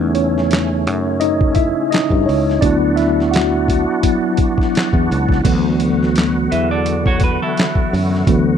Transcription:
Already playing: fretless electric bass E2, tonewheel organ C#3 A3 C#4, tine electric piano A3 C#4 D#4
0.15 tine electric piano C#4 C#5, closed hi-hat
0.38 snare
0.51 snare, clap, closed hi-hat
0.87 fretless electric bass F#2, closed hi-hat
1.20 tine electric piano D#4 D#5, closed hi-hat
1.41 kick
1.55 tine electric piano E4 E5, kick, closed hi-hat
1.91 tine electric piano D#4 D#5, snare, closed hi-hat
1.95 clap
2.10 fretless electric bass G2, kick
2.26 fretless electric bass C#2, tine electric piano C#4 C#5, open hi-hat
2.50 snare
2.61 fretless electric bass D2, tine electric piano F#3 B3 D4 E4 D5, tonewheel organ B3 D4 F#4, kick, closed hi-hat
2.96 tine electric piano E4 E5, closed hi-hat
3.00 snare
3.20 snare
3.31 tine electric piano F#4 F#5, closed hi-hat
3.36 snare, clap
3.68 kick, closed hi-hat
4.03 tine electric piano F#3 B3 E4, kick, closed hi-hat
4.37 kick, closed hi-hat
4.58 kick, snare
4.75 snare, clap, closed hi-hat
4.93 fretless electric bass E2, kick
5.11 fretless electric bass C#2, closed hi-hat
5.29 kick, snare
5.44 fretless electric bass D2, tonewheel organ D3 B3 F#4, tine electric piano E3 F#3 B3, kick, closed hi-hat, crash
5.80 closed hi-hat
6.03 snare
6.16 snare, clap, closed hi-hat
6.51 fretless electric bass E2, clean electric guitar B4 E5, closed hi-hat
6.71 clean electric guitar A4 D5
6.86 closed hi-hat
7.06 clean electric guitar F#4 C#5, kick
7.20 clean electric guitar F#4 B4, kick, closed hi-hat
7.42 clean electric guitar E4 A4
7.57 snare, clap, closed hi-hat
7.75 kick
7.93 fretless electric bass F#2, open hi-hat
8.15 snare
8.27 fretless electric bass D2, tine electric piano E3 F#3 B3, kick, closed hi-hat

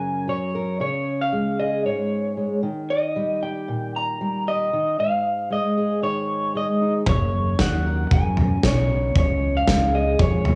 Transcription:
Already playing: steel-string acoustic guitar F#2 C#3 F#3 A#4, clean electric guitar G#5
0.28 steel-string acoustic guitar F#3, clean electric guitar C#5
0.55 steel-string acoustic guitar A#4
0.80 steel-string acoustic guitar C#3, clean electric guitar C#5
1.21 clean electric guitar F5
1.32 steel-string acoustic guitar G#3
1.59 steel-string acoustic guitar G#4, clean electric guitar D#5
1.85 steel-string acoustic guitar G#2, clean electric guitar C#5
2.37 steel-string acoustic guitar G#3
2.63 steel-string acoustic guitar D#3
2.90 clean electric guitar D#5
3.16 steel-string acoustic guitar G3
3.43 steel-string acoustic guitar G4, clean electric guitar G5
3.68 steel-string acoustic guitar A#2
3.96 clean electric guitar A#5
4.21 steel-string acoustic guitar G3
4.48 steel-string acoustic guitar G4, clean electric guitar D#5
4.73 steel-string acoustic guitar D#3
4.98 steel-string acoustic guitar G#2, clean electric guitar F5
5.50 steel-string acoustic guitar G#3, clean electric guitar D#5
5.77 steel-string acoustic guitar G#4
6.02 steel-string acoustic guitar D#3, clean electric guitar C#5
6.55 steel-string acoustic guitar G#3, clean electric guitar D#5
6.82 steel-string acoustic guitar D#4
7.06 fingered electric bass F#1, clean electric guitar C#5, kick, floor tom
7.59 fingered electric bass D#2, steel-string acoustic guitar F#3, clean electric guitar F#5, kick, snare
7.86 steel-string acoustic guitar A#4
8.11 fingered electric bass F#2, steel-string acoustic guitar C#3, clean electric guitar G#5, kick, floor tom
8.37 floor tom
8.63 fingered electric bass B1, steel-string acoustic guitar A#2, clean electric guitar C#5, kick, snare
8.90 steel-string acoustic guitar B2
9.15 fingered electric bass C#2, steel-string acoustic guitar C#3, clean electric guitar C#5, kick, floor tom
9.57 clean electric guitar F5
9.67 fingered electric bass C#2, steel-string acoustic guitar G#3, kick, snare
9.94 steel-string acoustic guitar G#4, clean electric guitar D#5
10.19 fingered electric bass F2, steel-string acoustic guitar G#2, clean electric guitar C#5, kick, floor tom
10.45 steel-string acoustic guitar B2, floor tom

